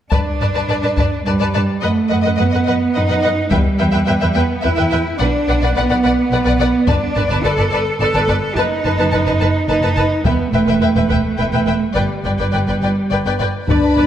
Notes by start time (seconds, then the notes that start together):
0.12 G2 D4 B4 D5 A5, taiko
0.40 G2 B4 D5 A5
0.54 G2 B4 D5 A5
0.69 G2 B4 D5 A5
0.83 G2 B4 D5 A5
0.97 G2 B4 D5 A5, taiko
1.25 G2 G3 B4 D5 A5
1.39 G2 B4 D5 A5
1.54 G2 B4 D5 A5
1.82 F#2 A3 B4 D#5 F#5
2.10 F#2 B4 D#5 F#5
2.23 F#2 B4 D#5 F#5
2.38 F#2 B3 B4 D#5 F#5
2.52 F#2 B4 D#5 F#5
2.66 F#2 B4 D#5 F#5
2.95 F#2 D#4 B4 D#5 F#5
3.08 F#2 B4 D#5 F#5
3.23 F#2 B4 D#5 F#5
3.51 E2 G3 B4 E5 G5, taiko
3.79 E2 B4 E5 G5
3.92 E2 B4 E5 G5
4.07 E2 B4 E5 G5
4.21 E2 B4 E5 G5
4.34 E2 B3 B4 E5 G5
4.62 E2 E4 B4 E5 G5
4.76 E2 B4 E5 G5
4.91 E2 B4 E5 G5
5.18 B1 D4 B4 D5 F#5
5.48 B1 B4 D5 F#5
5.61 B1 B4 D5 F#5
5.75 B1 B3 B4 D5 F#5
5.89 B1 B4 D5 F#5
6.04 B1 B4 D5 F#5
6.32 B1 B4 D5 F#5
6.45 B1 B4 D5 F#5
6.59 B1 B4 D5 F#5
6.88 G1 D4 B4 D5 A5, taiko
7.16 G1 B4 D5 A5
7.28 G1 B4 D5 A5
7.44 G1 A4 B4 D5 A5
7.58 G1 B4 D5 A5
7.71 G1 B4 D5 A5
8.00 G1 A4 B4 D5 A5
8.14 G1 B4 D5 A5
8.20 A4
8.28 G1 B4 D5 A5
8.39 A4
8.57 F#1 D#4 B4 A5
8.85 F#1 B4 A5
8.98 F#1 B4 A5
9.11 F#1 B4 A5
9.26 F#1 B4 A5
9.40 F#1 B4 A5
9.69 F#1 D#4 B4 A5
9.82 F#1 B4 A5
9.96 F#1 B4 A5
10.25 E1 B3 B4 E5 G5, taiko
10.53 E1 A3 B4 E5 G5
10.67 E1 B4 E5 G5
10.81 E1 B4 E5 G5
10.96 E1 B4 E5 G5
11.09 E1 B4 E5 G5, taiko
11.38 E1 B4 E5 G5
11.53 E1 B4 E5 G5
11.66 E1 B4 E5 G5
11.95 G1 G3 B4 D5 G5
12.24 G1 B4 D5 G5
12.39 G1 B4 D5 G5
12.52 G1 B4 D5 G5
12.68 G1 B4 D5 G5
12.82 G1 B4 D5 G5
13.10 G1 B4 D5 G5
13.25 G1 B4 D5 G5
13.40 G1 B4 D5 G5
13.69 G1 G2 D4 B4 D5 A5 B5, taiko
13.98 G1 G2 B4 D5